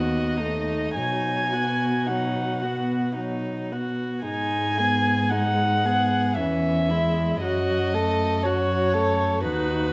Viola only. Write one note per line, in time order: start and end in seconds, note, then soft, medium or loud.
0.00 0.41 B3 soft
0.40 0.98 A3 soft
0.98 1.56 F#3 soft
1.54 2.11 B3 soft
2.10 2.65 F#3 soft
2.64 3.17 B3 soft
3.19 3.73 F#3 soft
3.72 4.25 B3 soft
4.25 4.81 G#3 soft
4.79 5.32 B3 soft
5.31 5.86 G#3 soft
5.84 6.38 B3 soft
6.38 6.93 E3 soft
6.91 7.42 G#3 soft
7.42 7.95 F#3 soft
7.93 8.46 A3 soft
8.44 8.95 F#3 soft
8.94 9.44 A3 soft
9.45 9.93 D#4 soft